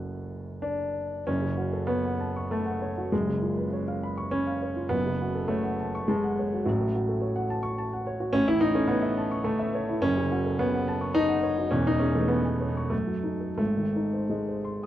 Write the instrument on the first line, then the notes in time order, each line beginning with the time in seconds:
grand piano
Already playing: F#1 F#2 A3 C#4 F#4 F#5 F#6
0.62 D4
1.27 F#1 F#2 C#4
1.42 C#3
1.58 F#4
1.73 A4
1.87 B3 C#5
2.05 F#5
2.20 A5
2.36 C#6
2.51 A3 A5
2.66 F#5
2.82 C#5
2.98 F#4
3.12 F#1 F#2 G#3
3.27 C#3
3.41 F4
3.57 B4
3.73 C#5
3.88 F5
4.03 B5
4.18 C#6
4.31 C#4 B5
4.47 F5
4.62 C#5
4.76 F4
4.89 F#1 F#2 B3
5.06 C#3
5.22 F#4
5.35 A4
5.48 A3 C#5
5.64 F#5
5.80 A5
5.95 C#6
6.08 G#3 A5
6.24 F#5
6.39 C#5
6.54 F#4
6.65 A1 A2 F#3
6.81 A3
6.95 F#4
7.09 A4
7.22 C#5
7.36 F#5
7.50 A5
7.63 C#6
7.78 A5
7.93 F#5
8.07 C#5
8.20 F#4
8.33 A1 A2 C#4
8.48 E3 E4
8.61 D#4 E4
8.75 C#4 A4
8.88 B3 C#5
9.03 E5
9.18 A5
9.31 C#6
9.44 A3 A5
9.59 E5
9.75 C#5
9.89 E4
10.02 F#1 F#2 C#4
10.18 C#3
10.32 F#4
10.46 A4
10.59 B3 C#5
10.74 F#5
10.88 A5
11.01 C#6
11.15 D#4 A5
11.29 F#5
11.43 C#5
11.58 F#4
11.71 E1 E2 C#4
11.86 E3 D#4
11.99 C#4 G#4
12.15 E3 A3
12.28 B3 C#5
12.45 G#5
12.60 C#5
12.77 C#6
12.90 F#2 A3
13.07 F#3
13.23 D#4
13.41 A4
13.57 G#1 G#2 A3
13.77 D#3
13.96 D#4
14.13 C5
14.29 G#3 D#5
14.48 C5
14.65 C6
14.83 D#6